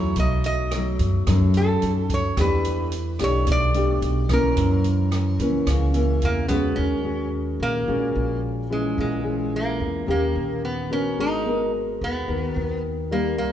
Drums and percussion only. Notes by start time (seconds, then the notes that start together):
0.16 kick, closed hi-hat
0.44 closed hi-hat
0.71 cross-stick, closed hi-hat
0.99 kick, closed hi-hat
1.27 kick, cross-stick, closed hi-hat
1.54 closed hi-hat
1.82 closed hi-hat
2.10 kick, closed hi-hat
2.37 kick, cross-stick, closed hi-hat
2.64 closed hi-hat
2.92 closed hi-hat
3.19 cross-stick, closed hi-hat
3.47 kick, closed hi-hat
3.74 closed hi-hat
4.02 closed hi-hat
4.29 kick, cross-stick, closed hi-hat
4.57 kick, closed hi-hat
4.84 closed hi-hat
5.12 cross-stick, closed hi-hat
5.39 kick, closed hi-hat
5.67 kick, cross-stick, closed hi-hat
5.94 closed hi-hat
6.22 closed hi-hat
6.49 kick, closed hi-hat